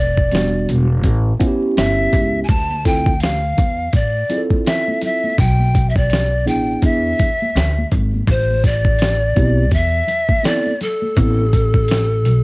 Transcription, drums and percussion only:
0.17 kick medium
0.31 snare loud
0.31 closed hi-hat medium
0.69 closed hi-hat medium
1.04 kick medium
1.04 closed hi-hat medium
1.40 kick medium
1.40 closed hi-hat medium
1.77 snare loud
1.77 closed hi-hat medium
2.13 kick medium
2.13 closed hi-hat medium
2.48 kick loud
2.48 closed hi-hat medium
2.48 shaker medium
2.70 high conga soft
2.70 shaker soft
2.85 kick medium
2.85 closed hi-hat medium
2.85 shaker soft
3.06 kick medium
3.06 shaker soft
3.20 snare loud
3.20 closed hi-hat medium
3.20 shaker medium
3.43 shaker soft
3.57 kick loud
3.57 closed hi-hat medium
3.57 low conga medium
3.57 shaker soft
3.79 shaker soft
3.93 kick medium
3.93 closed hi-hat loud
3.93 shaker medium
4.16 shaker soft
4.29 closed hi-hat medium
4.29 low conga medium
4.29 shaker soft
4.50 kick medium
4.50 high conga medium
4.50 shaker soft
4.65 snare loud
4.65 closed hi-hat medium
4.65 shaker medium
4.88 high conga medium
4.88 shaker soft
5.02 closed hi-hat medium
5.02 low conga medium
5.02 shaker soft
5.24 high conga medium
5.24 shaker soft
5.38 kick loud
5.38 closed hi-hat medium
5.38 shaker medium
5.60 high conga soft
5.60 shaker soft
5.74 kick medium
5.74 closed hi-hat medium
5.74 shaker soft
5.96 kick medium
5.96 shaker soft
6.10 snare medium
6.10 closed hi-hat medium
6.10 shaker medium
6.33 shaker soft
6.47 closed hi-hat medium
6.47 low conga medium
6.47 shaker soft
6.70 shaker soft
6.82 kick medium
6.82 closed hi-hat medium
6.82 shaker soft
7.06 shaker soft
7.19 kick loud
7.19 closed hi-hat medium
7.19 low conga medium
7.19 shaker soft
7.42 high conga medium
7.42 shaker medium
7.56 snare loud
7.56 closed hi-hat loud
7.56 shaker medium
7.78 high conga medium
7.78 shaker soft
7.91 kick loud
7.91 closed hi-hat medium
7.91 low conga medium
7.91 shaker soft
8.14 high conga medium
8.14 shaker soft
8.27 kick loud
8.27 closed hi-hat medium
8.27 shaker medium
8.50 high conga soft
8.50 shaker soft
8.64 kick medium
8.64 closed hi-hat medium
8.64 shaker soft
8.85 kick medium
8.85 shaker soft
8.99 snare loud
8.99 closed hi-hat medium
8.99 shaker medium
9.23 shaker soft
9.36 kick loud
9.36 closed hi-hat medium
9.36 low conga medium
9.36 shaker soft
9.58 shaker soft
9.71 kick medium
9.71 closed hi-hat medium
9.71 shaker medium
9.94 shaker soft
10.07 closed hi-hat medium
10.07 low conga medium
10.07 shaker soft
10.29 kick medium
10.29 high conga medium
10.29 shaker soft
10.43 snare loud
10.43 closed hi-hat loud
10.43 shaker medium
10.67 high conga medium
10.67 shaker soft
10.81 closed hi-hat medium
10.81 low conga medium
10.81 shaker soft
11.02 high conga medium
11.02 shaker soft
11.16 kick loud
11.16 closed hi-hat loud
11.16 shaker medium
11.38 high conga soft
11.38 shaker soft
11.53 kick medium
11.53 closed hi-hat medium
11.53 shaker soft
11.74 kick medium
11.74 shaker soft
11.88 snare loud
11.88 closed hi-hat medium
11.88 shaker medium
12.11 shaker soft
12.25 closed hi-hat medium
12.25 low conga medium
12.25 shaker soft

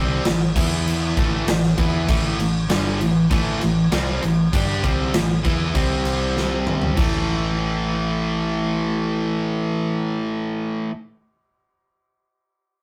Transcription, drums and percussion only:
0.25 snare loud
0.25 crash medium
0.56 kick loud
0.56 crash loud
0.87 crash medium
1.17 kick loud
1.17 crash medium
1.48 snare loud
1.48 crash medium
1.63 snare soft
1.78 kick loud
1.78 crash medium
2.09 kick loud
2.09 crash medium
2.40 crash medium
2.70 snare loud
2.70 crash medium
3.01 crash medium
3.31 kick loud
3.31 crash medium
3.61 crash medium
3.92 snare loud
3.92 crash medium
4.22 crash medium
4.53 kick loud
4.53 crash medium
4.84 kick loud
4.84 crash medium
5.14 snare loud
5.14 crash medium
5.45 kick loud
5.45 crash medium
5.75 kick loud
5.75 crash medium
6.05 crash medium
6.37 snare medium
6.67 mid tom loud
6.82 floor tom medium
6.97 kick loud
6.97 crash loud

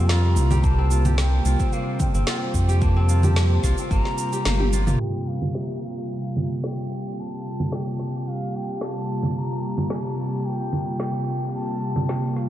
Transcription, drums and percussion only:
0.09 snare medium
0.09 cabasa soft
0.36 cabasa medium
0.51 low conga medium
0.51 cabasa soft
0.64 kick loud
0.64 cabasa soft
0.91 cabasa medium
1.05 low conga medium
1.05 cabasa soft
1.18 snare medium
1.18 cabasa soft
1.45 cabasa medium
1.60 kick medium
1.60 cabasa soft
1.73 cabasa soft
2.00 kick medium
2.00 low conga medium
2.00 cabasa medium
2.15 cabasa soft
2.27 snare loud
2.27 cabasa soft
2.54 kick medium
2.54 cabasa medium
2.69 cabasa soft
2.82 kick loud
2.82 cabasa soft
3.09 cabasa medium
3.23 low conga medium
3.23 cabasa soft
3.36 snare medium
3.36 cabasa soft
3.64 kick medium
3.64 snare soft
3.64 cabasa medium
3.78 cabasa soft
3.91 kick medium
3.91 cabasa soft
4.05 snare soft
4.18 cabasa medium
4.33 cabasa soft
4.45 snare loud
4.45 high tom medium
4.45 cabasa soft
4.60 high tom medium
4.73 cabasa medium
4.87 mid tom medium
4.87 low conga medium
4.87 cabasa soft
5.42 low conga medium
5.55 snare medium
6.36 low conga medium
6.64 snare medium
7.60 low conga medium
7.72 snare medium
7.99 snare soft
8.81 snare medium
9.23 low conga medium
9.78 low conga medium
9.90 snare medium
10.73 low conga medium
11.00 snare medium
11.96 low conga medium
12.09 snare medium
12.37 snare soft

